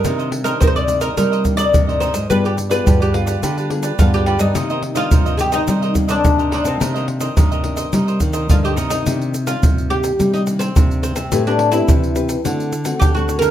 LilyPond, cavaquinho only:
\new Staff \with { instrumentName = "Cavaquinho" } { \time 4/4 \key c \minor \tempo 4 = 106 <ees' bes' c'' ees''>16 <bes' c'' ees''>16 r16 <bes' c'' ees''>16 <ees' bes' c'' ees''>16 <bes' c'' ees''>8 <bes' c'' ees''>16 <ees' bes' c'' ees''>16 <bes' c'' ees''>16 r16 <bes' c'' ees''>8 <bes' c'' ees''>16 <ees' bes' c'' ees''>16 <bes' c'' ees''>16 | <f' g' b' d''>16 <g' b' d''>16 r16 <g' b' d''>16 <f' g' b' d''>16 <g' b' d''>8 <g' b' d''>16 <f' g' b' d''>16 <g' b' d''>16 r16 <g' b' d''>8 <g' b' d''>16 <f' g' b' d''>16 <g' b' d''>16 | <ees' bes' c'' ees''>16 <bes' c'' ees''>16 r16 <bes' c'' ees''>16 <ees' bes' c'' ees''>16 <bes' c'' ees''>8 <bes' c'' ees''>16 <ees' bes' c'' ees''>16 <bes' c'' ees''>16 r16 <bes' c'' ees''>8 <bes' c'' ees''>16 <ees' bes' c'' ees''>16 <bes' c'' ees''>16 | <ees' bes' c'' ees''>16 <bes' c'' ees''>16 r16 <bes' c'' ees''>16 <ees' bes' c'' ees''>16 <bes' c'' ees''>8 <bes' c'' ees''>16 <ees' bes' c'' ees''>16 <bes' c'' ees''>16 r16 <bes' c'' ees''>8 <bes' c'' ees''>16 <ees' bes' c'' ees''>16 <bes' c'' ees''>16 |
r1 | r1 | }